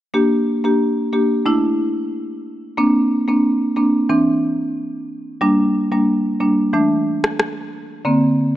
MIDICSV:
0, 0, Header, 1, 3, 480
1, 0, Start_track
1, 0, Tempo, 659341
1, 103, Time_signature, 4, 2, 24, 8
1, 6234, End_track
2, 0, Start_track
2, 0, Title_t, "Marimba"
2, 0, Program_c, 0, 12
2, 100, Note_on_c, 0, 58, 89
2, 102, Note_on_c, 0, 62, 81
2, 104, Note_on_c, 0, 67, 93
2, 438, Note_off_c, 0, 58, 0
2, 439, Note_off_c, 0, 62, 0
2, 440, Note_off_c, 0, 67, 0
2, 467, Note_on_c, 0, 58, 72
2, 470, Note_on_c, 0, 62, 67
2, 472, Note_on_c, 0, 67, 81
2, 794, Note_off_c, 0, 58, 0
2, 795, Note_off_c, 0, 62, 0
2, 797, Note_off_c, 0, 67, 0
2, 820, Note_on_c, 0, 58, 70
2, 822, Note_on_c, 0, 62, 65
2, 824, Note_on_c, 0, 67, 80
2, 1043, Note_off_c, 0, 58, 0
2, 1044, Note_off_c, 0, 62, 0
2, 1045, Note_off_c, 0, 67, 0
2, 1060, Note_on_c, 0, 57, 86
2, 1062, Note_on_c, 0, 62, 79
2, 1064, Note_on_c, 0, 64, 97
2, 1949, Note_off_c, 0, 57, 0
2, 1950, Note_off_c, 0, 62, 0
2, 1951, Note_off_c, 0, 64, 0
2, 2020, Note_on_c, 0, 58, 87
2, 2022, Note_on_c, 0, 60, 79
2, 2025, Note_on_c, 0, 62, 95
2, 2358, Note_off_c, 0, 58, 0
2, 2359, Note_off_c, 0, 60, 0
2, 2360, Note_off_c, 0, 62, 0
2, 2387, Note_on_c, 0, 58, 72
2, 2389, Note_on_c, 0, 60, 70
2, 2392, Note_on_c, 0, 62, 83
2, 2714, Note_off_c, 0, 58, 0
2, 2715, Note_off_c, 0, 60, 0
2, 2717, Note_off_c, 0, 62, 0
2, 2740, Note_on_c, 0, 58, 71
2, 2742, Note_on_c, 0, 60, 63
2, 2744, Note_on_c, 0, 62, 81
2, 2963, Note_off_c, 0, 58, 0
2, 2964, Note_off_c, 0, 60, 0
2, 2965, Note_off_c, 0, 62, 0
2, 2980, Note_on_c, 0, 52, 86
2, 2982, Note_on_c, 0, 60, 81
2, 2984, Note_on_c, 0, 62, 98
2, 3869, Note_off_c, 0, 52, 0
2, 3870, Note_off_c, 0, 60, 0
2, 3871, Note_off_c, 0, 62, 0
2, 3938, Note_on_c, 0, 55, 92
2, 3941, Note_on_c, 0, 58, 80
2, 3942, Note_on_c, 0, 62, 99
2, 4277, Note_off_c, 0, 55, 0
2, 4278, Note_off_c, 0, 58, 0
2, 4279, Note_off_c, 0, 62, 0
2, 4306, Note_on_c, 0, 55, 74
2, 4308, Note_on_c, 0, 58, 71
2, 4310, Note_on_c, 0, 62, 80
2, 4634, Note_off_c, 0, 55, 0
2, 4634, Note_off_c, 0, 58, 0
2, 4636, Note_off_c, 0, 62, 0
2, 4660, Note_on_c, 0, 55, 71
2, 4662, Note_on_c, 0, 58, 66
2, 4663, Note_on_c, 0, 62, 77
2, 4883, Note_off_c, 0, 55, 0
2, 4884, Note_off_c, 0, 58, 0
2, 4885, Note_off_c, 0, 62, 0
2, 4900, Note_on_c, 0, 52, 90
2, 4902, Note_on_c, 0, 57, 81
2, 4904, Note_on_c, 0, 62, 100
2, 5789, Note_off_c, 0, 52, 0
2, 5790, Note_off_c, 0, 57, 0
2, 5791, Note_off_c, 0, 62, 0
2, 5859, Note_on_c, 0, 50, 91
2, 5861, Note_on_c, 0, 58, 83
2, 5863, Note_on_c, 0, 60, 102
2, 6197, Note_off_c, 0, 50, 0
2, 6198, Note_off_c, 0, 58, 0
2, 6199, Note_off_c, 0, 60, 0
2, 6234, End_track
3, 0, Start_track
3, 0, Title_t, "Drums"
3, 5270, Note_on_c, 9, 37, 89
3, 5343, Note_off_c, 9, 37, 0
3, 5384, Note_on_c, 9, 37, 85
3, 5456, Note_off_c, 9, 37, 0
3, 6234, End_track
0, 0, End_of_file